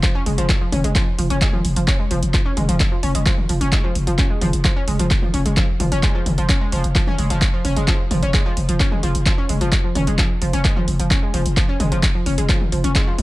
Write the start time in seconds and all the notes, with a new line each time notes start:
0.03 F3, kick, clap, closed hi-hat
0.15 C#4
0.26 F1 G#3, open hi-hat
0.38 F1 F3, closed hi-hat
0.49 kick, clap, closed hi-hat
0.61 F3
0.72 F1 C#4, open hi-hat, mid tom
0.84 F1 G#3, closed hi-hat
0.95 F3, kick, clap, closed hi-hat
1.19 F1 F3, open hi-hat
1.30 F1 C#4, closed hi-hat
1.42 G#3, kick, clap, closed hi-hat
1.53 F3, mid tom
1.65 F1, open hi-hat
1.76 F1 F3, closed hi-hat
1.88 C#4, kick, clap, closed hi-hat
2.00 G#3
2.11 F1 F3, open hi-hat
2.23 F1, closed hi-hat
2.34 F3, kick, clap, closed hi-hat
2.46 C#4
2.57 F1 G#3, open hi-hat, mid tom
2.69 F1 F3, closed hi-hat
2.80 kick, clap, closed hi-hat
2.92 F3
3.03 F1 C#4, open hi-hat
3.15 F1 G#3, closed hi-hat
3.26 F3, kick, clap, closed hi-hat
3.38 mid tom
3.49 F1 F3, open hi-hat
3.61 F1 C#4, closed hi-hat
3.72 G#3, kick, clap, closed hi-hat
3.84 F3
3.95 F1, open hi-hat
4.07 F1 F3, closed hi-hat
4.18 C#4, kick, clap, closed hi-hat
4.30 G#3
4.41 F1 F3, open hi-hat, mid tom
4.53 F1, closed hi-hat
4.65 F3, kick, clap, closed hi-hat
4.76 C#4
4.88 F1 G#3, open hi-hat
4.99 F1 F3, closed hi-hat
5.11 kick, clap, closed hi-hat
5.23 F3, mid tom
5.34 F1 C#4, open hi-hat
5.46 F1 G#3, closed hi-hat
5.57 F3, kick, clap, closed hi-hat
5.80 F1 F3, open hi-hat, mid tom
5.92 F1 C#4, closed hi-hat
6.03 G#3, kick, clap, closed hi-hat
6.15 F3
6.26 F1, open hi-hat, mid tom
6.38 F1 F3, closed hi-hat
6.49 C#4, kick, clap, closed hi-hat
6.61 G#3
6.72 F1 F3, open hi-hat
6.84 F1, closed hi-hat
6.95 F3, kick, clap, closed hi-hat
7.07 C#4, mid tom
7.19 F1 G#3, open hi-hat
7.30 F1 F3, closed hi-hat
7.42 kick, clap, closed hi-hat
7.53 F3
7.65 F1 C#4, open hi-hat
7.77 F1 G#3, closed hi-hat
7.88 F3, kick, clap, closed hi-hat
8.11 F1 F3, open hi-hat, mid tom
8.23 F1 C#4, closed hi-hat
8.34 G#3, kick, clap, closed hi-hat
8.46 F3
8.57 F1, open hi-hat
8.69 F1 F3, closed hi-hat
8.80 C#4, kick, clap, closed hi-hat
8.92 G#3, mid tom
9.03 F1 F3, open hi-hat
9.15 F1, closed hi-hat
9.26 F3, kick, clap, closed hi-hat
9.38 C#4
9.49 F1 G#3, open hi-hat
9.61 F1 F3, closed hi-hat
9.72 kick, clap, closed hi-hat
9.84 F3
9.95 F1 C#4, open hi-hat, mid tom
10.07 F1 G#3, closed hi-hat
10.18 F3, kick, clap, closed hi-hat
10.42 F1 F3, open hi-hat
10.53 F1 C#4, closed hi-hat
10.65 G#3, kick, clap, closed hi-hat
10.76 F3, mid tom
10.88 F1, open hi-hat
11.00 F1 F3, closed hi-hat
11.11 C#4, kick, clap, closed hi-hat
11.23 G#3
11.34 F1 F3, open hi-hat
11.46 F1, closed hi-hat
11.57 F3, kick, clap, closed hi-hat
11.69 C#4
11.80 F1 G#3, open hi-hat, mid tom
11.92 F1 F3, closed hi-hat
12.03 kick, clap, closed hi-hat
12.15 F3
12.26 F1 C#4, open hi-hat
12.38 F1 G#3, closed hi-hat
12.49 F3, kick, clap, closed hi-hat
12.61 mid tom
12.72 F1 F3, open hi-hat
12.84 F1 C#4, closed hi-hat
12.95 G#3, kick, clap, closed hi-hat
13.07 F3
13.18 F1, open hi-hat, mid tom